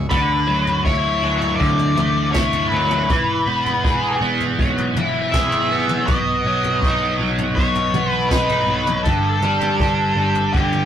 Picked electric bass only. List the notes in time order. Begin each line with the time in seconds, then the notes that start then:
0.11 D2
0.49 D2
0.86 D2
1.23 D2
1.60 D2
1.97 D2
2.35 D2
2.71 D2
3.10 E1
3.46 E1
3.85 E1
4.21 E1
4.59 E1
4.95 E1
5.34 E1
6.08 B1
6.44 B1
6.82 B1
7.19 B1
7.57 B1
7.93 B1
8.31 B1
8.67 B1
9.05 G1
9.41 G1
9.80 G1
10.15 G1
10.55 G1